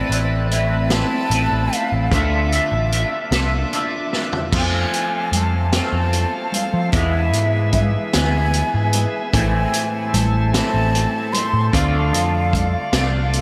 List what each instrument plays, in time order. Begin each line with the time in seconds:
Already playing: clean electric guitar A3 C4 E4, tonewheel organ C4 A5 B5, flute D5
0.10 picked electric bass A1, clean electric guitar C4 E4 B4, closed hi-hat
0.51 clean electric guitar A3 C4 E4 B4, flute E5, closed hi-hat
0.90 clean electric guitar C4 E4 B4, flute A5, snare, closed hi-hat
1.30 picked electric bass A1, clean electric guitar A3 C4 E4 B4, closed hi-hat
1.52 picked electric bass A1
1.72 clean electric guitar C4 E4 B4, flute F5, closed hi-hat
1.92 picked electric bass A1
2.11 picked electric bass D2, clean electric guitar D3 A3 D4 F4 A4 E5, tonewheel organ E5 D6, flute E5, kick, closed hi-hat
2.52 clean electric guitar D4 F4 A4 E5, closed hi-hat
2.72 picked electric bass A1
2.92 clean electric guitar D4 F4 A4 E5, closed hi-hat
3.31 picked electric bass C2, clean electric guitar D4 F4 A4 E5, snare, closed hi-hat
3.73 clean electric guitar D4 F4 A4 E5, closed hi-hat
4.13 clean electric guitar D4 F4 A4 E5, snare
4.33 floor tom
4.51 picked electric bass F2, clean electric guitar F3 A3 C4 F4, tonewheel organ A4 C5 F5, kick, crash, high conga
4.57 flute G#5
4.93 closed hi-hat, low conga
5.32 picked electric bass F2, closed hi-hat, low conga
5.37 flute A5
5.73 clean electric guitar F3 A3 C4 F4, flute A5, snare, closed hi-hat, high conga, low conga
5.93 picked electric bass F2
6.12 closed hi-hat, low conga
6.52 flute F5, closed hi-hat, low conga
6.74 picked electric bass F3
6.91 picked electric bass E2, clean electric guitar E3 G#3 B3, tonewheel organ G#4 B4 E5, flute E5, kick, closed hi-hat, high conga
6.96 clean electric guitar E4
7.33 picked electric bass G#2, closed hi-hat, low conga
7.72 flute E5, kick, closed hi-hat, low conga
7.80 flute F5
7.91 flute E5
8.13 picked electric bass D2, clean electric guitar E3 G#3 B3 E4, flute G#5, snare, closed hi-hat, high conga, low conga
8.53 closed hi-hat, low conga
8.74 picked electric bass G#2
8.93 closed hi-hat, low conga
9.33 picked electric bass A1, clean electric guitar A2 E3 A3 C4 E4, tonewheel organ A4 C5, flute G#5, kick, closed hi-hat, high conga
9.73 closed hi-hat, low conga
10.14 picked electric bass A1, flute A5, closed hi-hat, low conga
10.53 clean electric guitar A2 E3 A3 C4 E4, flute A5, snare, closed hi-hat, high conga, low conga
10.74 picked electric bass A1
10.94 closed hi-hat, low conga
11.32 flute C6, closed hi-hat, low conga
11.53 picked electric bass A2
11.72 picked electric bass D2, clean electric guitar D3 A3 D4 F4, tonewheel organ D5 F5, flute F5, kick, closed hi-hat, high conga
12.13 picked electric bass F2, closed hi-hat
12.53 kick, closed hi-hat, low conga
12.92 picked electric bass C2, clean electric guitar D3 A3 D4 F4, snare, closed hi-hat, high conga, low conga
13.14 low conga
13.33 closed hi-hat, high conga